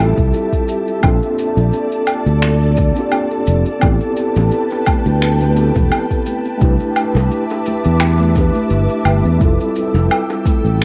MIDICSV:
0, 0, Header, 1, 5, 480
1, 0, Start_track
1, 0, Key_signature, 0, "minor"
1, 0, Tempo, 697674
1, 714, Time_signature, 4, 2, 24, 8
1, 7461, End_track
2, 0, Start_track
2, 0, Title_t, "Ambient pad"
2, 0, Program_c, 0, 92
2, 0, Note_on_c, 0, 67, 86
2, 0, Note_on_c, 0, 76, 80
2, 0, Note_on_c, 0, 81, 92
2, 688, Note_off_c, 0, 76, 0
2, 690, Note_off_c, 0, 81, 0
2, 691, Note_off_c, 0, 67, 0
2, 706, Note_on_c, 0, 69, 85
2, 708, Note_on_c, 0, 74, 80
2, 709, Note_on_c, 0, 81, 91
2, 2611, Note_off_c, 0, 69, 0
2, 2612, Note_off_c, 0, 74, 0
2, 2628, Note_on_c, 0, 71, 87
2, 2630, Note_on_c, 0, 79, 79
2, 4524, Note_off_c, 0, 81, 0
2, 4528, Note_off_c, 0, 71, 0
2, 4533, Note_off_c, 0, 79, 0
2, 4536, Note_on_c, 0, 71, 86
2, 4539, Note_on_c, 0, 81, 83
2, 4540, Note_on_c, 0, 76, 82
2, 4544, Note_on_c, 0, 86, 99
2, 6446, Note_off_c, 0, 71, 0
2, 6447, Note_off_c, 0, 81, 0
2, 6448, Note_off_c, 0, 76, 0
2, 6450, Note_off_c, 0, 86, 0
2, 6469, Note_on_c, 0, 79, 81
2, 6472, Note_on_c, 0, 69, 86
2, 6472, Note_on_c, 0, 88, 95
2, 7461, Note_off_c, 0, 69, 0
2, 7461, Note_off_c, 0, 79, 0
2, 7461, Note_off_c, 0, 88, 0
2, 7461, End_track
3, 0, Start_track
3, 0, Title_t, "Tine electric piano"
3, 0, Program_c, 1, 4
3, 0, Control_c, 1, 64, 127
3, 0, Note_on_c, 1, 55, 72
3, 0, Note_on_c, 1, 60, 67
3, 0, Note_on_c, 1, 64, 67
3, 0, Note_on_c, 1, 65, 85
3, 0, Note_on_c, 1, 69, 100
3, 7, Note_off_c, 1, 65, 0
3, 7, Note_on_c, 1, 65, 68
3, 18, Note_off_c, 1, 69, 0
3, 18, Note_on_c, 1, 69, 84
3, 678, Note_off_c, 1, 55, 0
3, 682, Note_off_c, 1, 60, 0
3, 688, Note_off_c, 1, 64, 0
3, 693, Note_on_c, 1, 58, 88
3, 694, Note_off_c, 1, 65, 0
3, 700, Note_off_c, 1, 69, 0
3, 706, Note_on_c, 1, 60, 82
3, 717, Note_on_c, 1, 62, 83
3, 722, Control_c, 1, 64, 0
3, 728, Note_on_c, 1, 65, 83
3, 742, Note_on_c, 1, 69, 101
3, 861, Control_c, 1, 64, 127
3, 1877, Note_off_c, 1, 58, 0
3, 1884, Note_off_c, 1, 60, 0
3, 1889, Note_off_c, 1, 62, 0
3, 1895, Note_off_c, 1, 65, 0
3, 1902, Note_off_c, 1, 69, 0
3, 2015, Note_on_c, 1, 58, 87
3, 2030, Note_on_c, 1, 60, 81
3, 2040, Note_on_c, 1, 62, 86
3, 2054, Note_on_c, 1, 65, 84
3, 2066, Note_on_c, 1, 67, 94
3, 2593, Note_off_c, 1, 58, 0
3, 2600, Note_off_c, 1, 60, 0
3, 2606, Note_off_c, 1, 62, 0
3, 2610, Note_on_c, 1, 59, 91
3, 2612, Note_off_c, 1, 65, 0
3, 2618, Note_off_c, 1, 67, 0
3, 2619, Note_on_c, 1, 60, 79
3, 2631, Note_on_c, 1, 64, 84
3, 2643, Control_c, 1, 64, 0
3, 2647, Note_on_c, 1, 67, 83
3, 2656, Note_on_c, 1, 69, 103
3, 2776, Control_c, 1, 64, 127
3, 3796, Note_off_c, 1, 59, 0
3, 3800, Note_off_c, 1, 60, 0
3, 3804, Note_on_c, 1, 59, 74
3, 3806, Note_off_c, 1, 64, 0
3, 3814, Note_off_c, 1, 67, 0
3, 3819, Note_off_c, 1, 69, 0
3, 3819, Note_on_c, 1, 60, 66
3, 3830, Note_on_c, 1, 64, 61
3, 3839, Note_on_c, 1, 67, 68
3, 3852, Note_on_c, 1, 69, 78
3, 4513, Note_off_c, 1, 59, 0
3, 4520, Note_off_c, 1, 60, 0
3, 4525, Note_on_c, 1, 57, 91
3, 4526, Note_off_c, 1, 64, 0
3, 4530, Note_off_c, 1, 67, 0
3, 4537, Note_off_c, 1, 69, 0
3, 4538, Note_on_c, 1, 62, 83
3, 4550, Note_on_c, 1, 64, 86
3, 4562, Note_on_c, 1, 67, 80
3, 4563, Control_c, 1, 64, 0
3, 4575, Note_on_c, 1, 71, 98
3, 4675, Control_c, 1, 64, 127
3, 5713, Note_off_c, 1, 57, 0
3, 5720, Note_off_c, 1, 62, 0
3, 5726, Note_off_c, 1, 64, 0
3, 5732, Note_off_c, 1, 67, 0
3, 5735, Note_on_c, 1, 57, 75
3, 5738, Note_off_c, 1, 71, 0
3, 5746, Note_on_c, 1, 62, 66
3, 5758, Note_on_c, 1, 64, 69
3, 5771, Note_on_c, 1, 67, 68
3, 5784, Note_on_c, 1, 71, 80
3, 6438, Note_off_c, 1, 57, 0
3, 6444, Note_off_c, 1, 62, 0
3, 6450, Note_off_c, 1, 64, 0
3, 6454, Note_on_c, 1, 55, 97
3, 6456, Note_off_c, 1, 67, 0
3, 6463, Note_off_c, 1, 71, 0
3, 6465, Note_on_c, 1, 60, 80
3, 6477, Note_on_c, 1, 64, 85
3, 6483, Control_c, 1, 64, 0
3, 6489, Note_on_c, 1, 65, 82
3, 6501, Note_on_c, 1, 69, 101
3, 6585, Control_c, 1, 64, 127
3, 7461, Note_off_c, 1, 55, 0
3, 7461, Note_off_c, 1, 60, 0
3, 7461, Note_off_c, 1, 64, 0
3, 7461, Note_off_c, 1, 65, 0
3, 7461, Note_off_c, 1, 69, 0
3, 7461, End_track
4, 0, Start_track
4, 0, Title_t, "Fingered electric bass"
4, 0, Program_c, 2, 33
4, 0, Note_on_c, 2, 33, 85
4, 85, Note_off_c, 2, 33, 0
4, 125, Note_on_c, 2, 36, 85
4, 214, Note_off_c, 2, 36, 0
4, 715, Note_on_c, 2, 34, 95
4, 822, Note_off_c, 2, 34, 0
4, 1079, Note_on_c, 2, 34, 91
4, 1171, Note_off_c, 2, 34, 0
4, 1555, Note_on_c, 2, 38, 82
4, 2002, Note_off_c, 2, 38, 0
4, 2391, Note_on_c, 2, 29, 94
4, 2500, Note_off_c, 2, 29, 0
4, 2635, Note_on_c, 2, 33, 94
4, 2742, Note_off_c, 2, 33, 0
4, 3001, Note_on_c, 2, 33, 99
4, 3092, Note_off_c, 2, 33, 0
4, 3480, Note_on_c, 2, 38, 88
4, 3925, Note_off_c, 2, 38, 0
4, 3963, Note_on_c, 2, 28, 93
4, 4053, Note_off_c, 2, 28, 0
4, 4554, Note_on_c, 2, 36, 91
4, 4661, Note_off_c, 2, 36, 0
4, 4918, Note_on_c, 2, 36, 100
4, 5011, Note_off_c, 2, 36, 0
4, 5405, Note_on_c, 2, 40, 85
4, 5847, Note_off_c, 2, 40, 0
4, 5990, Note_on_c, 2, 31, 96
4, 6099, Note_off_c, 2, 31, 0
4, 6227, Note_on_c, 2, 31, 89
4, 6338, Note_off_c, 2, 31, 0
4, 6357, Note_on_c, 2, 40, 79
4, 6450, Note_off_c, 2, 40, 0
4, 6474, Note_on_c, 2, 29, 91
4, 6581, Note_off_c, 2, 29, 0
4, 6840, Note_on_c, 2, 29, 98
4, 6932, Note_off_c, 2, 29, 0
4, 7325, Note_on_c, 2, 33, 84
4, 7461, Note_off_c, 2, 33, 0
4, 7461, End_track
5, 0, Start_track
5, 0, Title_t, "Drums"
5, 122, Note_on_c, 9, 36, 111
5, 122, Note_on_c, 9, 82, 34
5, 190, Note_off_c, 9, 82, 0
5, 191, Note_off_c, 9, 36, 0
5, 232, Note_on_c, 9, 82, 45
5, 301, Note_off_c, 9, 82, 0
5, 363, Note_on_c, 9, 36, 61
5, 364, Note_on_c, 9, 82, 33
5, 431, Note_off_c, 9, 36, 0
5, 433, Note_off_c, 9, 82, 0
5, 471, Note_on_c, 9, 82, 84
5, 540, Note_off_c, 9, 82, 0
5, 603, Note_on_c, 9, 82, 35
5, 672, Note_off_c, 9, 82, 0
5, 709, Note_on_c, 9, 77, 79
5, 709, Note_on_c, 9, 82, 47
5, 713, Note_on_c, 9, 36, 127
5, 778, Note_off_c, 9, 77, 0
5, 778, Note_off_c, 9, 82, 0
5, 781, Note_off_c, 9, 36, 0
5, 844, Note_on_c, 9, 82, 29
5, 913, Note_off_c, 9, 82, 0
5, 952, Note_on_c, 9, 82, 75
5, 1021, Note_off_c, 9, 82, 0
5, 1082, Note_on_c, 9, 82, 33
5, 1151, Note_off_c, 9, 82, 0
5, 1191, Note_on_c, 9, 82, 47
5, 1260, Note_off_c, 9, 82, 0
5, 1318, Note_on_c, 9, 82, 35
5, 1387, Note_off_c, 9, 82, 0
5, 1423, Note_on_c, 9, 77, 72
5, 1423, Note_on_c, 9, 82, 74
5, 1492, Note_off_c, 9, 77, 0
5, 1492, Note_off_c, 9, 82, 0
5, 1559, Note_on_c, 9, 82, 36
5, 1627, Note_off_c, 9, 82, 0
5, 1665, Note_on_c, 9, 26, 73
5, 1665, Note_on_c, 9, 82, 43
5, 1734, Note_off_c, 9, 26, 0
5, 1734, Note_off_c, 9, 82, 0
5, 1799, Note_on_c, 9, 82, 32
5, 1868, Note_off_c, 9, 82, 0
5, 1904, Note_on_c, 9, 82, 80
5, 1913, Note_on_c, 9, 36, 104
5, 1973, Note_off_c, 9, 82, 0
5, 1981, Note_off_c, 9, 36, 0
5, 2035, Note_on_c, 9, 82, 36
5, 2104, Note_off_c, 9, 82, 0
5, 2144, Note_on_c, 9, 77, 72
5, 2144, Note_on_c, 9, 82, 46
5, 2213, Note_off_c, 9, 77, 0
5, 2213, Note_off_c, 9, 82, 0
5, 2277, Note_on_c, 9, 82, 30
5, 2346, Note_off_c, 9, 82, 0
5, 2385, Note_on_c, 9, 82, 88
5, 2454, Note_off_c, 9, 82, 0
5, 2516, Note_on_c, 9, 82, 33
5, 2585, Note_off_c, 9, 82, 0
5, 2624, Note_on_c, 9, 77, 75
5, 2624, Note_on_c, 9, 82, 45
5, 2633, Note_on_c, 9, 36, 121
5, 2693, Note_off_c, 9, 77, 0
5, 2693, Note_off_c, 9, 82, 0
5, 2702, Note_off_c, 9, 36, 0
5, 2756, Note_on_c, 9, 82, 29
5, 2824, Note_off_c, 9, 82, 0
5, 2866, Note_on_c, 9, 82, 75
5, 2934, Note_off_c, 9, 82, 0
5, 2996, Note_on_c, 9, 82, 33
5, 3007, Note_on_c, 9, 60, 59
5, 3065, Note_off_c, 9, 82, 0
5, 3076, Note_off_c, 9, 60, 0
5, 3106, Note_on_c, 9, 82, 48
5, 3175, Note_off_c, 9, 82, 0
5, 3237, Note_on_c, 9, 82, 29
5, 3248, Note_on_c, 9, 60, 52
5, 3306, Note_off_c, 9, 82, 0
5, 3317, Note_off_c, 9, 60, 0
5, 3347, Note_on_c, 9, 77, 73
5, 3347, Note_on_c, 9, 82, 72
5, 3352, Note_on_c, 9, 36, 101
5, 3353, Note_on_c, 9, 63, 85
5, 3416, Note_off_c, 9, 77, 0
5, 3416, Note_off_c, 9, 82, 0
5, 3420, Note_off_c, 9, 36, 0
5, 3422, Note_off_c, 9, 63, 0
5, 3483, Note_on_c, 9, 82, 37
5, 3552, Note_off_c, 9, 82, 0
5, 3591, Note_on_c, 9, 26, 68
5, 3591, Note_on_c, 9, 82, 45
5, 3660, Note_off_c, 9, 26, 0
5, 3660, Note_off_c, 9, 82, 0
5, 3718, Note_on_c, 9, 82, 33
5, 3721, Note_on_c, 9, 63, 89
5, 3787, Note_off_c, 9, 82, 0
5, 3790, Note_off_c, 9, 63, 0
5, 3828, Note_on_c, 9, 82, 78
5, 3897, Note_off_c, 9, 82, 0
5, 3960, Note_on_c, 9, 63, 67
5, 3960, Note_on_c, 9, 64, 93
5, 3963, Note_on_c, 9, 36, 102
5, 3963, Note_on_c, 9, 82, 35
5, 4029, Note_off_c, 9, 63, 0
5, 4029, Note_off_c, 9, 64, 0
5, 4031, Note_off_c, 9, 36, 0
5, 4031, Note_off_c, 9, 82, 0
5, 4071, Note_on_c, 9, 77, 74
5, 4072, Note_on_c, 9, 82, 44
5, 4140, Note_off_c, 9, 77, 0
5, 4140, Note_off_c, 9, 82, 0
5, 4202, Note_on_c, 9, 82, 31
5, 4203, Note_on_c, 9, 36, 55
5, 4271, Note_off_c, 9, 82, 0
5, 4272, Note_off_c, 9, 36, 0
5, 4308, Note_on_c, 9, 82, 79
5, 4317, Note_on_c, 9, 63, 53
5, 4377, Note_off_c, 9, 82, 0
5, 4386, Note_off_c, 9, 63, 0
5, 4438, Note_on_c, 9, 82, 31
5, 4507, Note_off_c, 9, 82, 0
5, 4549, Note_on_c, 9, 82, 45
5, 4551, Note_on_c, 9, 36, 122
5, 4618, Note_off_c, 9, 82, 0
5, 4620, Note_off_c, 9, 36, 0
5, 4680, Note_on_c, 9, 82, 31
5, 4749, Note_off_c, 9, 82, 0
5, 4790, Note_on_c, 9, 77, 76
5, 4790, Note_on_c, 9, 82, 71
5, 4859, Note_off_c, 9, 77, 0
5, 4859, Note_off_c, 9, 82, 0
5, 4927, Note_on_c, 9, 82, 32
5, 4930, Note_on_c, 9, 60, 70
5, 4996, Note_off_c, 9, 82, 0
5, 4999, Note_off_c, 9, 60, 0
5, 5031, Note_on_c, 9, 82, 45
5, 5100, Note_off_c, 9, 82, 0
5, 5158, Note_on_c, 9, 82, 30
5, 5168, Note_on_c, 9, 60, 60
5, 5227, Note_off_c, 9, 82, 0
5, 5237, Note_off_c, 9, 60, 0
5, 5269, Note_on_c, 9, 82, 74
5, 5282, Note_on_c, 9, 63, 83
5, 5337, Note_off_c, 9, 82, 0
5, 5351, Note_off_c, 9, 63, 0
5, 5396, Note_on_c, 9, 82, 34
5, 5465, Note_off_c, 9, 82, 0
5, 5504, Note_on_c, 9, 26, 73
5, 5504, Note_on_c, 9, 77, 73
5, 5504, Note_on_c, 9, 82, 41
5, 5573, Note_off_c, 9, 26, 0
5, 5573, Note_off_c, 9, 77, 0
5, 5573, Note_off_c, 9, 82, 0
5, 5638, Note_on_c, 9, 82, 30
5, 5641, Note_on_c, 9, 63, 92
5, 5706, Note_off_c, 9, 82, 0
5, 5710, Note_off_c, 9, 63, 0
5, 5748, Note_on_c, 9, 82, 74
5, 5752, Note_on_c, 9, 36, 101
5, 5763, Note_on_c, 9, 60, 60
5, 5817, Note_off_c, 9, 82, 0
5, 5821, Note_off_c, 9, 36, 0
5, 5832, Note_off_c, 9, 60, 0
5, 5882, Note_on_c, 9, 82, 33
5, 5888, Note_on_c, 9, 63, 72
5, 5950, Note_off_c, 9, 82, 0
5, 5957, Note_off_c, 9, 63, 0
5, 5986, Note_on_c, 9, 82, 41
5, 6055, Note_off_c, 9, 82, 0
5, 6118, Note_on_c, 9, 82, 29
5, 6187, Note_off_c, 9, 82, 0
5, 6227, Note_on_c, 9, 77, 82
5, 6227, Note_on_c, 9, 82, 74
5, 6238, Note_on_c, 9, 63, 53
5, 6296, Note_off_c, 9, 77, 0
5, 6296, Note_off_c, 9, 82, 0
5, 6307, Note_off_c, 9, 63, 0
5, 6363, Note_on_c, 9, 82, 33
5, 6432, Note_off_c, 9, 82, 0
5, 6474, Note_on_c, 9, 36, 122
5, 6476, Note_on_c, 9, 82, 45
5, 6542, Note_off_c, 9, 36, 0
5, 6545, Note_off_c, 9, 82, 0
5, 6607, Note_on_c, 9, 82, 28
5, 6676, Note_off_c, 9, 82, 0
5, 6713, Note_on_c, 9, 82, 69
5, 6782, Note_off_c, 9, 82, 0
5, 6846, Note_on_c, 9, 60, 61
5, 6846, Note_on_c, 9, 82, 32
5, 6914, Note_off_c, 9, 60, 0
5, 6915, Note_off_c, 9, 82, 0
5, 6957, Note_on_c, 9, 77, 90
5, 6957, Note_on_c, 9, 82, 42
5, 7026, Note_off_c, 9, 77, 0
5, 7026, Note_off_c, 9, 82, 0
5, 7088, Note_on_c, 9, 60, 58
5, 7089, Note_on_c, 9, 82, 31
5, 7157, Note_off_c, 9, 60, 0
5, 7157, Note_off_c, 9, 82, 0
5, 7194, Note_on_c, 9, 36, 96
5, 7197, Note_on_c, 9, 82, 71
5, 7203, Note_on_c, 9, 63, 81
5, 7263, Note_off_c, 9, 36, 0
5, 7266, Note_off_c, 9, 82, 0
5, 7272, Note_off_c, 9, 63, 0
5, 7331, Note_on_c, 9, 82, 33
5, 7400, Note_off_c, 9, 82, 0
5, 7461, End_track
0, 0, End_of_file